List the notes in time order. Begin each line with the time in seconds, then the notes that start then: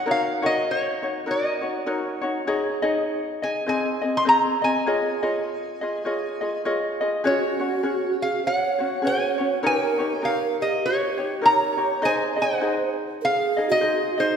0.06 D#4 F#4 A#4 C#5
0.11 F5
0.42 D#4 F#4 A#4 C#5 D#5
0.71 C#5
1.03 D#4 F#4 C#5
1.26 D#4 F#4 A#4 C#5
1.31 D#5
1.61 D#4 F#4 C#5
1.86 D#4 F#4 A#4 C#5
2.21 D#4 F#4 C#5
2.47 D#4 G#4 C#5 D#5
2.82 D#4 G#4 C#5 D#5
3.42 D#4 G#4 D#5 G#5
3.66 C4 G#4 C5 D#5 G#5
4.02 C4 G#4 D#5
4.17 C6
4.25 C4 G#4 C5 D#5 A#5
4.62 C4 G#4 D#5 G#5
4.86 F4 G#4 C#5 D#5
5.23 F4 G#4 C#5 D#5
5.81 F4 G#4 D#5
6.05 F4 G#4 C#5 D#5
6.41 F4 G#4 D#5
6.65 F4 G#4 C#5 D#5
7.01 F4 G#4 D#5
7.24 C#4 F4 F#4 G#4 C#5
7.36 F#4
7.60 C#4 F#4 C#5
7.83 C#4 F#4 G#4 C#5
8.22 G#4 F5
8.45 C#5 F#5
8.79 C#4 F#4 C#5
9.02 C#4 F#4 G#4 C#5
9.07 G#5
9.38 C#4 F#4 C#5
9.63 D#4 G4 A#4 C#5 G5
9.98 D#4 G4 C#5
10.22 D#4 G4 A#4 C#5 F5
10.61 G4 D#5
10.86 G4 C#5
11.18 D#4 G4 C#5
11.41 D#4 G4 A#4 C#5
11.46 A#5
11.77 D#4 G4 C#5
12.02 D#4 G#4 C5 D#5 G#5
12.36 D#4 G#4 C5 D#5
12.42 F#5
12.61 D#4 G#4 C5 D#5
13.21 G#4 A#4 F5
13.57 D#4 G#4 D#5
13.69 F#4 D#5
13.81 D#4 G#4 C5 D#5
14.18 D#4 G#4 C5 D#5